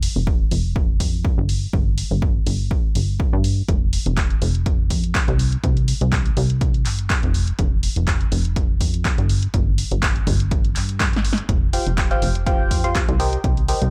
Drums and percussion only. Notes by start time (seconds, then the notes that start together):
0.03 open hi-hat
0.27 kick
0.51 open hi-hat
0.76 kick
1.00 kick, open hi-hat
1.25 kick
1.49 open hi-hat
1.73 kick
1.98 open hi-hat
2.22 kick
2.46 open hi-hat
2.71 kick
2.95 open hi-hat
3.20 kick
3.44 open hi-hat
3.68 kick, closed hi-hat
3.93 open hi-hat
4.06 closed hi-hat
4.17 kick, clap, closed hi-hat
4.30 closed hi-hat
4.42 open hi-hat
4.55 closed hi-hat
4.66 kick, closed hi-hat
4.90 kick, open hi-hat
5.04 closed hi-hat
5.15 kick, clap, closed hi-hat
5.28 closed hi-hat
5.39 open hi-hat
5.52 closed hi-hat
5.64 kick, closed hi-hat
5.77 closed hi-hat
5.88 open hi-hat
6.01 closed hi-hat
6.12 kick, clap, closed hi-hat
6.26 closed hi-hat
6.37 open hi-hat
6.50 closed hi-hat
6.61 kick, closed hi-hat
6.74 closed hi-hat
6.86 clap, open hi-hat
6.99 closed hi-hat
7.10 kick, clap, closed hi-hat
7.23 closed hi-hat
7.34 open hi-hat
7.47 closed hi-hat
7.59 kick, closed hi-hat
7.83 open hi-hat
7.96 closed hi-hat
8.07 kick, clap, closed hi-hat
8.21 closed hi-hat
8.32 open hi-hat
8.45 closed hi-hat
8.56 kick, closed hi-hat
8.81 kick, open hi-hat
8.94 closed hi-hat
9.05 kick, clap, closed hi-hat
9.18 closed hi-hat
9.29 open hi-hat
9.43 closed hi-hat
9.54 kick, closed hi-hat
9.78 open hi-hat
9.91 closed hi-hat
10.03 kick, clap, closed hi-hat
10.16 closed hi-hat
10.27 kick, open hi-hat
10.40 closed hi-hat
10.51 kick, closed hi-hat
10.65 closed hi-hat
10.76 clap, open hi-hat
10.89 closed hi-hat
11.00 kick, snare, clap, closed hi-hat
11.13 snare, closed hi-hat
11.25 open hi-hat
11.33 snare
11.38 closed hi-hat
11.49 kick, closed hi-hat
11.73 open hi-hat
11.87 closed hi-hat
11.98 kick, clap, closed hi-hat
12.11 closed hi-hat
12.22 open hi-hat
12.35 closed hi-hat
12.46 kick, closed hi-hat
12.71 kick, open hi-hat
12.84 closed hi-hat
12.95 kick, clap, closed hi-hat
13.09 closed hi-hat
13.20 open hi-hat
13.33 closed hi-hat
13.44 kick, closed hi-hat
13.57 closed hi-hat
13.68 open hi-hat
13.82 closed hi-hat